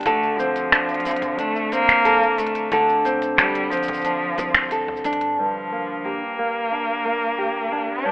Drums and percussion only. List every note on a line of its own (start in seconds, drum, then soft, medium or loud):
0.01 closed hi-hat soft
0.03 kick loud
0.03 closed hi-hat soft
0.06 closed hi-hat medium
0.06 shaker soft
0.23 shaker soft
0.40 shaker medium
0.56 closed hi-hat soft
0.56 shaker soft
0.72 finger snap medium
0.72 shaker soft
0.89 closed hi-hat soft
0.89 shaker soft
0.94 closed hi-hat soft
1.00 closed hi-hat soft
1.05 closed hi-hat soft
1.05 shaker medium
1.11 closed hi-hat soft
1.17 closed hi-hat soft
1.22 kick medium
1.22 closed hi-hat soft
1.22 shaker soft
1.39 closed hi-hat medium
1.39 shaker soft
1.56 shaker soft
1.72 closed hi-hat soft
1.72 shaker medium
1.89 finger snap medium
1.89 closed hi-hat soft
1.89 shaker soft
2.05 closed hi-hat medium
2.05 shaker soft
2.23 shaker soft
2.38 closed hi-hat soft
2.38 shaker medium
2.47 closed hi-hat soft
2.55 closed hi-hat soft
2.55 shaker soft
2.72 kick loud
2.72 closed hi-hat medium
2.72 shaker soft
2.89 shaker soft
3.05 closed hi-hat soft
3.05 shaker medium
3.22 closed hi-hat soft
3.22 shaker soft
3.38 finger snap medium
3.38 shaker soft
3.55 closed hi-hat medium
3.55 shaker soft
3.71 kick soft
3.71 closed hi-hat soft
3.71 shaker medium
3.77 closed hi-hat soft
3.83 closed hi-hat soft
3.83 shaker medium
3.88 kick loud
3.88 closed hi-hat soft
3.88 shaker soft
3.93 closed hi-hat soft
3.93 shaker soft
3.97 closed hi-hat soft
3.97 shaker soft
4.01 closed hi-hat medium
4.01 shaker soft
4.05 shaker soft
4.38 closed hi-hat soft
4.38 shaker medium
4.54 finger snap medium
4.54 closed hi-hat soft
4.54 shaker soft
4.71 closed hi-hat medium
4.71 shaker soft
4.88 kick medium
4.97 shaker soft
5.04 closed hi-hat soft
5.04 shaker medium
5.13 closed hi-hat soft
5.21 closed hi-hat soft